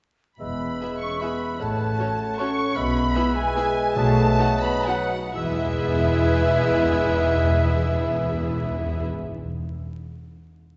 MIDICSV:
0, 0, Header, 1, 13, 480
1, 0, Start_track
1, 0, Key_signature, 4, "major"
1, 0, Tempo, 401070
1, 481, Time_signature, 3, 2, 24, 8
1, 1459, Tempo, 387097
1, 3859, Tempo, 414938
1, 5299, Tempo, 485437
1, 9139, Tempo, 450113
1, 11789, End_track
2, 0, Start_track
2, 0, Title_t, "Flute"
2, 0, Program_c, 0, 73
2, 477, Note_on_c, 0, 83, 50
2, 1166, Note_off_c, 0, 83, 0
2, 1216, Note_on_c, 0, 85, 52
2, 1452, Note_on_c, 0, 83, 55
2, 1471, Note_off_c, 0, 85, 0
2, 1927, Note_off_c, 0, 83, 0
2, 1935, Note_on_c, 0, 81, 65
2, 2901, Note_on_c, 0, 85, 82
2, 2920, Note_off_c, 0, 81, 0
2, 3376, Note_off_c, 0, 85, 0
2, 3383, Note_on_c, 0, 83, 88
2, 4098, Note_on_c, 0, 80, 77
2, 4116, Note_off_c, 0, 83, 0
2, 4786, Note_off_c, 0, 80, 0
2, 4792, Note_on_c, 0, 81, 97
2, 5523, Note_on_c, 0, 83, 84
2, 5538, Note_off_c, 0, 81, 0
2, 5758, Note_on_c, 0, 78, 72
2, 5773, Note_off_c, 0, 83, 0
2, 6237, Note_off_c, 0, 78, 0
2, 6243, Note_on_c, 0, 76, 71
2, 9946, Note_off_c, 0, 76, 0
2, 11789, End_track
3, 0, Start_track
3, 0, Title_t, "Violin section"
3, 0, Program_c, 1, 48
3, 473, Note_on_c, 1, 83, 64
3, 1194, Note_on_c, 1, 85, 69
3, 1212, Note_off_c, 1, 83, 0
3, 1443, Note_off_c, 1, 85, 0
3, 1457, Note_on_c, 1, 83, 63
3, 1930, Note_off_c, 1, 83, 0
3, 1940, Note_on_c, 1, 81, 72
3, 2905, Note_on_c, 1, 85, 92
3, 2906, Note_off_c, 1, 81, 0
3, 3376, Note_on_c, 1, 83, 100
3, 3378, Note_off_c, 1, 85, 0
3, 4094, Note_off_c, 1, 83, 0
3, 4099, Note_on_c, 1, 80, 112
3, 4790, Note_off_c, 1, 80, 0
3, 4797, Note_on_c, 1, 81, 116
3, 5520, Note_on_c, 1, 83, 108
3, 5529, Note_off_c, 1, 81, 0
3, 5763, Note_on_c, 1, 78, 90
3, 5765, Note_off_c, 1, 83, 0
3, 6242, Note_on_c, 1, 76, 95
3, 6246, Note_off_c, 1, 78, 0
3, 9946, Note_off_c, 1, 76, 0
3, 11789, End_track
4, 0, Start_track
4, 0, Title_t, "Oboe"
4, 0, Program_c, 2, 68
4, 476, Note_on_c, 2, 76, 41
4, 1409, Note_off_c, 2, 76, 0
4, 1454, Note_on_c, 2, 76, 41
4, 1942, Note_on_c, 2, 78, 51
4, 1960, Note_off_c, 2, 76, 0
4, 2899, Note_off_c, 2, 78, 0
4, 2907, Note_on_c, 2, 78, 58
4, 3370, Note_on_c, 2, 76, 70
4, 3388, Note_off_c, 2, 78, 0
4, 4788, Note_off_c, 2, 76, 0
4, 4795, Note_on_c, 2, 75, 75
4, 5750, Note_off_c, 2, 75, 0
4, 5754, Note_on_c, 2, 75, 65
4, 6002, Note_off_c, 2, 75, 0
4, 6247, Note_on_c, 2, 76, 78
4, 9948, Note_off_c, 2, 76, 0
4, 11789, End_track
5, 0, Start_track
5, 0, Title_t, "Clarinet"
5, 0, Program_c, 3, 71
5, 480, Note_on_c, 3, 71, 40
5, 1411, Note_off_c, 3, 71, 0
5, 1457, Note_on_c, 3, 71, 46
5, 1942, Note_on_c, 3, 73, 44
5, 1961, Note_off_c, 3, 71, 0
5, 2907, Note_off_c, 3, 73, 0
5, 2923, Note_on_c, 3, 73, 56
5, 3383, Note_on_c, 3, 71, 70
5, 3401, Note_off_c, 3, 73, 0
5, 4804, Note_off_c, 3, 71, 0
5, 4815, Note_on_c, 3, 71, 72
5, 5759, Note_off_c, 3, 71, 0
5, 5778, Note_on_c, 3, 71, 68
5, 6014, Note_off_c, 3, 71, 0
5, 6247, Note_on_c, 3, 71, 67
5, 9949, Note_off_c, 3, 71, 0
5, 11789, End_track
6, 0, Start_track
6, 0, Title_t, "Violin section"
6, 0, Program_c, 4, 48
6, 971, Note_on_c, 4, 76, 36
6, 973, Note_on_c, 4, 68, 37
6, 1067, Note_off_c, 4, 76, 0
6, 1069, Note_off_c, 4, 68, 0
6, 1453, Note_on_c, 4, 76, 41
6, 1454, Note_on_c, 4, 68, 37
6, 1552, Note_off_c, 4, 76, 0
6, 1553, Note_off_c, 4, 68, 0
6, 2429, Note_on_c, 4, 69, 45
6, 2432, Note_on_c, 4, 73, 45
6, 2529, Note_off_c, 4, 69, 0
6, 2531, Note_off_c, 4, 73, 0
6, 2910, Note_on_c, 4, 69, 56
6, 2914, Note_on_c, 4, 73, 53
6, 3009, Note_off_c, 4, 69, 0
6, 3013, Note_off_c, 4, 73, 0
6, 3855, Note_on_c, 4, 68, 64
6, 3856, Note_on_c, 4, 76, 61
6, 3948, Note_off_c, 4, 68, 0
6, 3949, Note_off_c, 4, 76, 0
6, 4342, Note_on_c, 4, 68, 64
6, 4342, Note_on_c, 4, 76, 64
6, 4434, Note_off_c, 4, 68, 0
6, 4434, Note_off_c, 4, 76, 0
6, 5298, Note_on_c, 4, 66, 67
6, 5299, Note_on_c, 4, 78, 68
6, 5378, Note_off_c, 4, 66, 0
6, 5378, Note_off_c, 4, 78, 0
6, 5777, Note_on_c, 4, 66, 55
6, 5778, Note_on_c, 4, 78, 60
6, 5856, Note_off_c, 4, 66, 0
6, 5857, Note_off_c, 4, 78, 0
6, 6259, Note_on_c, 4, 64, 73
6, 6260, Note_on_c, 4, 68, 76
6, 9955, Note_off_c, 4, 64, 0
6, 9955, Note_off_c, 4, 68, 0
6, 11789, End_track
7, 0, Start_track
7, 0, Title_t, "Harp"
7, 0, Program_c, 5, 46
7, 477, Note_on_c, 5, 52, 36
7, 714, Note_on_c, 5, 64, 32
7, 965, Note_on_c, 5, 68, 39
7, 1210, Note_on_c, 5, 71, 34
7, 1689, Note_off_c, 5, 71, 0
7, 1704, Note_on_c, 5, 71, 41
7, 1943, Note_on_c, 5, 45, 51
7, 1957, Note_off_c, 5, 52, 0
7, 1957, Note_off_c, 5, 64, 0
7, 1958, Note_off_c, 5, 71, 0
7, 1959, Note_off_c, 5, 68, 0
7, 2175, Note_on_c, 5, 61, 40
7, 2415, Note_on_c, 5, 66, 46
7, 2662, Note_on_c, 5, 69, 45
7, 2903, Note_on_c, 5, 73, 49
7, 3129, Note_off_c, 5, 69, 0
7, 3144, Note_on_c, 5, 69, 60
7, 3374, Note_on_c, 5, 47, 64
7, 3395, Note_off_c, 5, 69, 0
7, 3395, Note_off_c, 5, 73, 0
7, 3398, Note_off_c, 5, 45, 0
7, 3398, Note_off_c, 5, 66, 0
7, 3399, Note_off_c, 5, 61, 0
7, 3605, Note_on_c, 5, 59, 53
7, 4096, Note_on_c, 5, 68, 62
7, 4333, Note_on_c, 5, 71, 60
7, 4550, Note_off_c, 5, 68, 0
7, 4564, Note_on_c, 5, 68, 72
7, 4779, Note_off_c, 5, 47, 0
7, 4793, Note_on_c, 5, 47, 74
7, 4818, Note_off_c, 5, 68, 0
7, 5019, Note_off_c, 5, 59, 0
7, 5032, Note_on_c, 5, 59, 61
7, 5284, Note_on_c, 5, 63, 73
7, 5521, Note_on_c, 5, 66, 55
7, 5753, Note_off_c, 5, 71, 0
7, 5765, Note_on_c, 5, 71, 57
7, 5997, Note_off_c, 5, 66, 0
7, 6009, Note_on_c, 5, 66, 59
7, 6243, Note_on_c, 5, 52, 60
7, 6261, Note_off_c, 5, 63, 0
7, 6263, Note_off_c, 5, 47, 0
7, 6264, Note_off_c, 5, 66, 0
7, 6301, Note_off_c, 5, 59, 0
7, 6313, Note_on_c, 5, 59, 60
7, 6381, Note_on_c, 5, 64, 61
7, 6449, Note_on_c, 5, 68, 61
7, 6519, Note_on_c, 5, 76, 61
7, 9155, Note_off_c, 5, 71, 0
7, 10451, Note_off_c, 5, 52, 0
7, 10527, Note_off_c, 5, 59, 0
7, 10601, Note_off_c, 5, 64, 0
7, 10674, Note_off_c, 5, 68, 0
7, 10749, Note_off_c, 5, 76, 0
7, 11789, End_track
8, 0, Start_track
8, 0, Title_t, "Viola section"
8, 0, Program_c, 6, 48
8, 978, Note_on_c, 6, 59, 38
8, 981, Note_on_c, 6, 64, 36
8, 1074, Note_off_c, 6, 59, 0
8, 1077, Note_off_c, 6, 64, 0
8, 1458, Note_on_c, 6, 64, 33
8, 1460, Note_on_c, 6, 59, 36
8, 1557, Note_off_c, 6, 64, 0
8, 1559, Note_off_c, 6, 59, 0
8, 2406, Note_on_c, 6, 66, 45
8, 2410, Note_on_c, 6, 61, 49
8, 2506, Note_off_c, 6, 66, 0
8, 2509, Note_off_c, 6, 61, 0
8, 2912, Note_on_c, 6, 61, 52
8, 2913, Note_on_c, 6, 66, 48
8, 3011, Note_off_c, 6, 61, 0
8, 3012, Note_off_c, 6, 66, 0
8, 3861, Note_on_c, 6, 59, 68
8, 3867, Note_on_c, 6, 64, 69
8, 3954, Note_off_c, 6, 59, 0
8, 3960, Note_off_c, 6, 64, 0
8, 4323, Note_on_c, 6, 64, 61
8, 4325, Note_on_c, 6, 59, 58
8, 4416, Note_off_c, 6, 64, 0
8, 4418, Note_off_c, 6, 59, 0
8, 5281, Note_on_c, 6, 63, 67
8, 5291, Note_on_c, 6, 59, 68
8, 5362, Note_off_c, 6, 63, 0
8, 5372, Note_off_c, 6, 59, 0
8, 5767, Note_on_c, 6, 63, 58
8, 5768, Note_on_c, 6, 59, 58
8, 5846, Note_off_c, 6, 63, 0
8, 5847, Note_off_c, 6, 59, 0
8, 6256, Note_on_c, 6, 59, 72
8, 6256, Note_on_c, 6, 64, 67
8, 9953, Note_off_c, 6, 59, 0
8, 9953, Note_off_c, 6, 64, 0
8, 11789, End_track
9, 0, Start_track
9, 0, Title_t, "French horn section"
9, 0, Program_c, 7, 60
9, 479, Note_on_c, 7, 59, 52
9, 1167, Note_off_c, 7, 59, 0
9, 1219, Note_on_c, 7, 61, 53
9, 1460, Note_on_c, 7, 59, 52
9, 1461, Note_off_c, 7, 61, 0
9, 1932, Note_off_c, 7, 59, 0
9, 1942, Note_on_c, 7, 57, 68
9, 2888, Note_off_c, 7, 57, 0
9, 2906, Note_on_c, 7, 61, 78
9, 3370, Note_off_c, 7, 61, 0
9, 3382, Note_on_c, 7, 59, 85
9, 4090, Note_on_c, 7, 56, 81
9, 4097, Note_off_c, 7, 59, 0
9, 4800, Note_off_c, 7, 56, 0
9, 4801, Note_on_c, 7, 57, 104
9, 5518, Note_off_c, 7, 57, 0
9, 5518, Note_on_c, 7, 59, 86
9, 5629, Note_off_c, 7, 59, 0
9, 5760, Note_on_c, 7, 54, 72
9, 6235, Note_off_c, 7, 54, 0
9, 6236, Note_on_c, 7, 64, 81
9, 9942, Note_off_c, 7, 64, 0
9, 11789, End_track
10, 0, Start_track
10, 0, Title_t, "Bassoon"
10, 0, Program_c, 8, 70
10, 481, Note_on_c, 8, 56, 38
10, 1412, Note_off_c, 8, 56, 0
10, 1454, Note_on_c, 8, 56, 46
10, 1934, Note_on_c, 8, 57, 51
10, 1953, Note_off_c, 8, 56, 0
10, 2903, Note_off_c, 8, 57, 0
10, 2916, Note_on_c, 8, 57, 61
10, 3365, Note_off_c, 8, 57, 0
10, 3372, Note_on_c, 8, 56, 72
10, 4772, Note_off_c, 8, 56, 0
10, 4793, Note_on_c, 8, 54, 80
10, 5749, Note_off_c, 8, 54, 0
10, 5774, Note_on_c, 8, 54, 59
10, 6012, Note_off_c, 8, 54, 0
10, 6249, Note_on_c, 8, 56, 74
10, 9949, Note_off_c, 8, 56, 0
10, 11789, End_track
11, 0, Start_track
11, 0, Title_t, "Cello section"
11, 0, Program_c, 10, 48
11, 474, Note_on_c, 10, 40, 43
11, 880, Note_off_c, 10, 40, 0
11, 1938, Note_on_c, 10, 45, 55
11, 2331, Note_off_c, 10, 45, 0
11, 3379, Note_on_c, 10, 47, 70
11, 3775, Note_off_c, 10, 47, 0
11, 4802, Note_on_c, 10, 47, 82
11, 5210, Note_off_c, 10, 47, 0
11, 6245, Note_on_c, 10, 40, 74
11, 9947, Note_off_c, 10, 40, 0
11, 11789, End_track
12, 0, Start_track
12, 0, Title_t, "Timpani"
12, 0, Program_c, 11, 47
12, 4790, Note_on_c, 11, 47, 82
12, 5487, Note_off_c, 11, 47, 0
12, 6246, Note_on_c, 11, 40, 71
12, 6319, Note_off_c, 11, 40, 0
12, 6319, Note_on_c, 11, 40, 69
12, 6389, Note_off_c, 11, 40, 0
12, 6389, Note_on_c, 11, 40, 80
12, 6462, Note_off_c, 11, 40, 0
12, 6471, Note_on_c, 11, 40, 74
12, 6545, Note_off_c, 11, 40, 0
12, 6545, Note_on_c, 11, 40, 76
12, 6618, Note_off_c, 11, 40, 0
12, 6619, Note_on_c, 11, 40, 73
12, 6692, Note_off_c, 11, 40, 0
12, 6694, Note_on_c, 11, 40, 77
12, 6760, Note_off_c, 11, 40, 0
12, 6760, Note_on_c, 11, 40, 71
12, 6832, Note_off_c, 11, 40, 0
12, 6832, Note_on_c, 11, 40, 71
12, 6903, Note_off_c, 11, 40, 0
12, 6903, Note_on_c, 11, 40, 73
12, 6976, Note_off_c, 11, 40, 0
12, 7057, Note_on_c, 11, 40, 68
12, 7130, Note_off_c, 11, 40, 0
12, 7132, Note_on_c, 11, 40, 78
12, 7205, Note_off_c, 11, 40, 0
12, 7205, Note_on_c, 11, 40, 66
12, 7278, Note_off_c, 11, 40, 0
12, 7278, Note_on_c, 11, 40, 86
12, 7351, Note_off_c, 11, 40, 0
12, 7353, Note_on_c, 11, 40, 70
12, 7424, Note_off_c, 11, 40, 0
12, 7424, Note_on_c, 11, 40, 74
12, 7497, Note_off_c, 11, 40, 0
12, 7500, Note_on_c, 11, 40, 80
12, 7572, Note_off_c, 11, 40, 0
12, 7572, Note_on_c, 11, 40, 76
12, 7644, Note_off_c, 11, 40, 0
12, 7644, Note_on_c, 11, 40, 63
12, 7715, Note_off_c, 11, 40, 0
12, 7715, Note_on_c, 11, 40, 79
12, 7788, Note_off_c, 11, 40, 0
12, 7790, Note_on_c, 11, 40, 74
12, 7863, Note_off_c, 11, 40, 0
12, 7865, Note_on_c, 11, 40, 83
12, 7938, Note_off_c, 11, 40, 0
12, 7940, Note_on_c, 11, 40, 75
12, 8010, Note_off_c, 11, 40, 0
12, 8010, Note_on_c, 11, 40, 84
12, 8083, Note_off_c, 11, 40, 0
12, 8087, Note_on_c, 11, 40, 68
12, 8161, Note_off_c, 11, 40, 0
12, 8164, Note_on_c, 11, 40, 72
12, 8229, Note_off_c, 11, 40, 0
12, 8229, Note_on_c, 11, 40, 70
12, 8302, Note_off_c, 11, 40, 0
12, 8302, Note_on_c, 11, 40, 74
12, 8374, Note_off_c, 11, 40, 0
12, 8374, Note_on_c, 11, 40, 71
12, 8447, Note_off_c, 11, 40, 0
12, 8447, Note_on_c, 11, 40, 80
12, 8519, Note_off_c, 11, 40, 0
12, 8519, Note_on_c, 11, 40, 76
12, 8593, Note_off_c, 11, 40, 0
12, 8594, Note_on_c, 11, 40, 68
12, 8667, Note_off_c, 11, 40, 0
12, 8677, Note_on_c, 11, 40, 73
12, 8750, Note_off_c, 11, 40, 0
12, 8763, Note_on_c, 11, 40, 76
12, 8834, Note_off_c, 11, 40, 0
12, 8834, Note_on_c, 11, 40, 67
12, 8907, Note_off_c, 11, 40, 0
12, 8907, Note_on_c, 11, 40, 74
12, 8980, Note_off_c, 11, 40, 0
12, 8981, Note_on_c, 11, 40, 73
12, 9051, Note_off_c, 11, 40, 0
12, 9051, Note_on_c, 11, 40, 70
12, 9119, Note_off_c, 11, 40, 0
12, 9119, Note_on_c, 11, 40, 73
12, 9197, Note_off_c, 11, 40, 0
12, 9198, Note_on_c, 11, 40, 76
12, 9275, Note_off_c, 11, 40, 0
12, 9275, Note_on_c, 11, 40, 77
12, 9354, Note_off_c, 11, 40, 0
12, 9356, Note_on_c, 11, 40, 79
12, 9432, Note_off_c, 11, 40, 0
12, 9432, Note_on_c, 11, 40, 71
12, 9511, Note_off_c, 11, 40, 0
12, 9512, Note_on_c, 11, 40, 78
12, 9591, Note_off_c, 11, 40, 0
12, 9591, Note_on_c, 11, 40, 74
12, 9667, Note_off_c, 11, 40, 0
12, 9667, Note_on_c, 11, 40, 74
12, 9746, Note_off_c, 11, 40, 0
12, 9747, Note_on_c, 11, 40, 73
12, 9826, Note_off_c, 11, 40, 0
12, 9830, Note_on_c, 11, 40, 76
12, 9908, Note_off_c, 11, 40, 0
12, 9908, Note_on_c, 11, 40, 77
12, 9987, Note_off_c, 11, 40, 0
12, 9994, Note_on_c, 11, 40, 80
12, 10066, Note_off_c, 11, 40, 0
12, 10066, Note_on_c, 11, 40, 69
12, 10141, Note_off_c, 11, 40, 0
12, 10141, Note_on_c, 11, 40, 83
12, 10220, Note_off_c, 11, 40, 0
12, 10227, Note_on_c, 11, 40, 68
12, 10302, Note_off_c, 11, 40, 0
12, 10302, Note_on_c, 11, 40, 77
12, 10379, Note_off_c, 11, 40, 0
12, 10379, Note_on_c, 11, 40, 69
12, 10458, Note_off_c, 11, 40, 0
12, 11789, End_track
13, 0, Start_track
13, 0, Title_t, "Double bass section"
13, 0, Program_c, 12, 48
13, 479, Note_on_c, 12, 28, 44
13, 882, Note_off_c, 12, 28, 0
13, 1939, Note_on_c, 12, 33, 50
13, 2331, Note_off_c, 12, 33, 0
13, 3375, Note_on_c, 12, 35, 74
13, 3773, Note_off_c, 12, 35, 0
13, 4792, Note_on_c, 12, 35, 84
13, 5205, Note_off_c, 12, 35, 0
13, 6252, Note_on_c, 12, 28, 72
13, 9951, Note_off_c, 12, 28, 0
13, 11789, End_track
0, 0, End_of_file